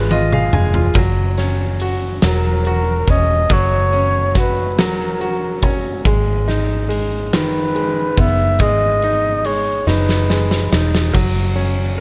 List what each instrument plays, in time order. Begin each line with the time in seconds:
Already playing: fingered electric bass G#1, grand piano C#3 G#3 F4 G#4 B4, flugelhorn C#5
0.11 grand piano F4 D#5, high tom
0.32 grand piano G#4 F5, mid tom
0.53 fingered electric bass F1, grand piano G#3 G#5, mid tom
0.74 grand piano F4, floor tom
0.94 fingered electric bass F#1, grand piano F#3, kick, closed hi-hat
1.38 grand piano C#4, snare, closed hi-hat
1.80 grand piano F#4, closed hi-hat
2.22 fingered electric bass E1, grand piano F#3, flugelhorn A#4, snare, closed hi-hat
2.65 grand piano F#4, closed hi-hat
3.07 fingered electric bass E1, grand piano C#4, flugelhorn D#5, kick, closed hi-hat
3.49 fingered electric bass F#1, grand piano F#3, flugelhorn C#5, kick, closed hi-hat
3.93 grand piano C#4, closed hi-hat
4.35 grand piano F#4, flugelhorn B4, kick, snare, closed hi-hat
4.78 fingered electric bass E1, grand piano F#3, flugelhorn A#4, snare, closed hi-hat
5.21 grand piano F#4, closed hi-hat
5.62 fingered electric bass F#1, grand piano C#4, kick, closed hi-hat
6.05 fingered electric bass G#1, grand piano G#3, kick, closed hi-hat
6.48 grand piano D#4, snare, closed hi-hat
6.89 grand piano G#3, closed hi-hat
7.33 fingered electric bass F#1, grand piano D#3, flugelhorn B4, snare, closed hi-hat
7.75 grand piano G#3, closed hi-hat
8.17 fingered electric bass F#1, grand piano B3, flugelhorn E5, kick, closed hi-hat
8.59 fingered electric bass G#1, grand piano G#3, flugelhorn D#5, kick, closed hi-hat
9.02 grand piano D#4, closed hi-hat
9.45 grand piano G#3, flugelhorn C#5, closed hi-hat
9.87 fingered electric bass F#1, grand piano D#4, flugelhorn B4, snare
10.09 snare
10.29 grand piano G#3, snare
10.51 snare
10.72 fingered electric bass E1, grand piano D#4, snare
10.95 snare
11.13 fingered electric bass F#1, grand piano F#3, kick, crash
11.56 grand piano C#4, closed hi-hat